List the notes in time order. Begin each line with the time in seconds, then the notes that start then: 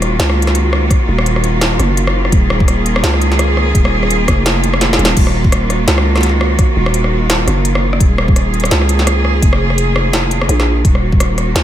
Already playing: D#1 D#3 A#3 F4 F#4
0.02 cross-stick, closed hi-hat
0.19 C#2, snare, closed hi-hat
0.29 cross-stick
0.42 closed hi-hat
0.47 cross-stick, snare
0.55 closed hi-hat
0.73 cross-stick
0.90 kick, cross-stick, closed hi-hat
1.08 D#1
1.18 cross-stick
1.26 closed hi-hat
1.36 cross-stick
1.44 closed hi-hat
1.61 cross-stick, snare, closed hi-hat
1.79 F#1, cross-stick, closed hi-hat
1.97 closed hi-hat
2.07 cross-stick
2.25 cross-stick
2.32 D#1 G#4, kick, closed hi-hat
2.50 cross-stick
2.60 kick
2.68 cross-stick, closed hi-hat
2.86 closed hi-hat
2.96 cross-stick
3.03 C#2, snare, closed hi-hat
3.14 cross-stick
3.21 closed hi-hat
3.32 snare
3.39 cross-stick, closed hi-hat
3.57 cross-stick
3.75 D#1, kick, closed hi-hat
3.85 cross-stick
4.03 cross-stick
4.11 closed hi-hat
4.28 F1, kick, cross-stick, closed hi-hat
4.46 cross-stick, snare, closed hi-hat
4.64 closed hi-hat
4.74 cross-stick
4.81 snare, closed hi-hat
4.93 snare
4.99 D#1, closed hi-hat
5.05 snare
5.17 D#1 F#4, kick, closed hi-hat, crash
5.27 cross-stick
5.45 kick
5.52 cross-stick, closed hi-hat
5.70 cross-stick, closed hi-hat
5.87 C#2, snare, closed hi-hat
5.98 cross-stick
6.16 cross-stick, snare
6.17 snare
6.21 snare
6.23 snare, closed hi-hat
6.26 snare
6.29 snare
6.41 cross-stick
6.59 kick, cross-stick, closed hi-hat
6.76 D#1
6.86 cross-stick
6.94 closed hi-hat
7.04 cross-stick
7.30 cross-stick, snare, closed hi-hat
7.47 F#1, cross-stick, closed hi-hat
7.65 closed hi-hat
7.75 cross-stick
7.93 cross-stick
8.00 D#1 G#4, kick, closed hi-hat
8.18 cross-stick
8.28 kick
8.36 cross-stick, closed hi-hat
8.54 closed hi-hat
8.60 cross-stick, closed hi-hat
8.65 closed hi-hat
8.71 C#2, snare, closed hi-hat
8.82 cross-stick
8.89 closed hi-hat
8.99 snare
9.07 cross-stick, closed hi-hat
9.25 cross-stick
9.42 F1, kick, closed hi-hat
9.53 cross-stick
9.70 cross-stick
9.78 closed hi-hat
9.96 cross-stick
10.13 cross-stick, snare, closed hi-hat
10.31 closed hi-hat
10.41 cross-stick
10.49 A#1, closed hi-hat
10.60 cross-stick, snare
10.84 D#1 F#4, kick, closed hi-hat
10.95 cross-stick
11.12 kick
11.20 cross-stick, closed hi-hat
11.38 cross-stick, closed hi-hat
11.55 C#2, snare, closed hi-hat